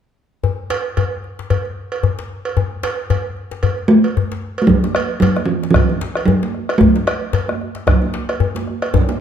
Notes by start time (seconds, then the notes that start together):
0.44 djembe tone, djembe bass
0.70 cowbell, djembe slap
0.97 cowbell, djembe tone, djembe bass
1.24 djembe slap
1.39 djembe slap
1.50 cowbell, djembe slap, djembe tone, djembe bass
1.65 djembe slap
1.92 cowbell
2.03 djembe slap, djembe tone, djembe bass
2.19 djembe slap
2.45 cowbell
2.57 djembe tone, djembe bass
2.83 cowbell, djembe slap
3.10 cowbell, djembe tone, djembe bass
3.37 djembe slap
3.51 djembe slap
3.63 cowbell, djembe slap, djembe tone, djembe bass
3.79 djembe slap
3.88 A3
4.04 cowbell
4.17 djembe slap, djembe tone, djembe bass
4.32 djembe slap
4.58 A3, cowbell
4.67 F#3, bombo low, djembe slap, djembe tone, low conga, djembe bass
4.84 bombo rim, djembe slap, high conga
4.95 bombo rim, cowbell, djembe slap
5.10 high conga
5.20 F#3, cowbell, djembe slap, djembe tone, djembe bass
5.37 bombo rim, high conga
5.46 E3, bombo rim
5.63 bombo rim, djembe slap
5.71 E3, bombo rim, bombo low
5.75 cowbell, djembe tone, djembe bass, low conga
5.90 high conga
6.01 djembe slap
6.15 bombo rim, cowbell
6.25 F#3, djembe tone, djembe bass
6.43 djembe slap, high conga
6.55 bombo rim
6.69 bombo rim, cowbell, high conga
6.78 A3, bombo low, djembe slap, djembe tone, low conga, djembe bass
6.96 bombo rim, djembe slap, high conga
7.07 bombo rim, cowbell
7.23 high conga
7.33 cowbell, djembe slap, djembe tone, djembe bass
7.48 bombo rim, high conga
7.61 bombo rim
7.75 bombo rim, djembe slap
7.87 bombo rim, bombo low, cowbell, djembe tone, low conga, djembe bass
8.02 high conga
8.14 djembe slap
8.29 bombo rim, cowbell
8.40 djembe tone, djembe bass
8.55 djembe slap, high conga
8.67 bombo rim
8.82 bombo rim, cowbell, high conga
8.94 bombo low, djembe slap, djembe tone, low conga, djembe bass
9.09 bombo rim, djembe slap, high conga